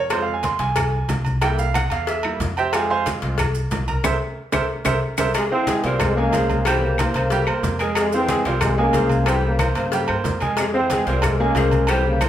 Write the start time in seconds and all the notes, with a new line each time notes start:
Already playing: F2 C#5
0.10 G#3 C4 F4 C5, cowbell, high conga, low agogo, claves, maracas
0.22 F5
0.28 high conga
0.34 G#5
0.43 C6, cowbell, high conga, low timbale, low agogo, maracas
0.59 C2 G#5, cowbell, high conga, maracas
0.76 cowbell, high conga, low conga, low agogo, claves, maracas
0.94 high conga
1.08 C2, cowbell, high conga, low timbale, low agogo, maracas
1.25 high conga, low agogo, maracas
1.41 G3 A#3 E4 G5, cowbell, low agogo, claves, maracas
1.59 F5, high conga, maracas
1.74 F#5, cowbell, high conga, low timbale, low agogo, claves, maracas
1.90 E2 F5, cowbell, low agogo, maracas
2.07 E5, cowbell, high conga, maracas
2.23 G3 A#3 E4, high conga, low agogo, claves
2.40 F2, cowbell, high conga, low timbale, maracas
2.57 G4 C5 E5 G5, low agogo, maracas
2.73 G#3 C4 F4 G#4 C5 F5 G#5, cowbell, high conga, low agogo, claves, maracas
2.90 C5 F5 G#5 C6, high conga
3.06 cowbell, high conga, low timbale, low agogo, maracas
3.22 C2 G#3 C4 F4, cowbell, maracas
3.38 cowbell, high conga, low conga, low agogo, claves, maracas
3.54 high conga, maracas
3.71 C2, cowbell, high conga, low timbale, low agogo, maracas
3.88 A#4 A#5, high conga, low agogo, maracas
4.04 C2 A#4 C5 E5, cowbell, high conga, high timbale, claves, maracas
4.52 C2 A#4 C5 E5, cowbell, high conga, high timbale, claves, maracas
4.85 C2 A#4 C5 E5, cowbell, high conga, high timbale, claves, maracas
5.18 C2 A#4 C5 E5, cowbell, high conga, high timbale, claves, maracas
5.34 C3 G#3 G#4, cowbell, high conga, low agogo, claves, maracas
5.51 E3 C4 C5 F5, high conga
5.67 G#3 G#4 G#5, cowbell, high conga, low timbale, low agogo, maracas
5.84 C2 A#2 G3 C4 A#4 C5 F5, cowbell, high conga, maracas
6.00 C3 G#3, cowbell, high conga, low conga, low agogo, claves, maracas
6.17 G#3 A#3 C#4 G#4 G#5, high conga
6.33 C2 G#3 G#4 C5 F5, cowbell, high conga, low timbale, low agogo, maracas
6.49 high conga, low agogo, maracas
6.65 E3 G3 C4 G4 C5 G5, cowbell, low agogo, claves, maracas
6.82 C#3 A#3, high conga
6.98 E3 A#3 A#4 C5, cowbell, high conga, low timbale, low agogo, claves, maracas
7.14 C2 C#3 A#3 C5, cowbell, low agogo, maracas
7.30 G3 G4 G5, cowbell, high conga, maracas
7.47 E2 A#3 A#4 C5, high conga, low agogo, claves
7.63 F2, cowbell, high conga, low timbale, maracas
7.79 G#3 G#4 A#4 G#5, low agogo, maracas
7.95 C3 G#3 G#4, cowbell, high conga, low agogo, claves, maracas
8.12 E3 C4 C5 F5, high conga, maracas
8.29 G#3 G#4 G#5, cowbell, high conga, low timbale, low agogo, maracas
8.45 C2 A#2 G3 C4 A#4 C5 F5, cowbell, high conga, maracas
8.61 C3 G#3, cowbell, high conga, low conga, low agogo, claves, maracas
8.78 G#3 A#3 C#4 G#4 G#5, high conga
8.93 C2 G#3 G#4 C5 F5, cowbell, high conga, low timbale, low agogo, maracas
9.09 high conga, low agogo, maracas
9.26 E3 G3 C4 G4 C5 G5, cowbell, low agogo, claves, maracas
9.43 C#3 A#3, high conga
9.59 E3 A#3 A#4 C5, cowbell, high conga, low timbale, low agogo, claves, maracas
9.75 G2 C#3 A#3 C5, cowbell, low agogo, maracas
9.92 G3 G4 G5, cowbell, high conga, maracas
10.08 G2 A#3 A#4 C5, high conga, low agogo, claves
10.24 F2, cowbell, high conga, low timbale, maracas
10.40 G#3 G#4 A#4 G#5, high conga, low agogo, maracas
10.57 C3 G#3 G#4, cowbell, high conga, low agogo, claves, maracas
10.74 E3 C4 C5 F5, high conga
10.90 G#3 G#4 G#5, cowbell, high conga, low timbale, low agogo, maracas
11.07 C2 A#2 G3 C4 A#4 C5 F5, cowbell, high conga, maracas
11.22 G#3, cowbell, high conga, low conga, low agogo, claves, maracas
11.26 C3
11.40 G#3 A#3 C#4 G#4 G#5, high conga
11.55 C2 G#3 G#4 C5 F5, cowbell, high conga, low timbale, low agogo, maracas
11.71 high conga, low agogo, maracas
11.87 E3 G3 C4 G4 C5 G5, cowbell, low agogo, claves, maracas
12.06 C#3 A#3, high conga
12.21 E3 A#3 A#4 C5, cowbell, high conga, low timbale, low agogo, claves, maracas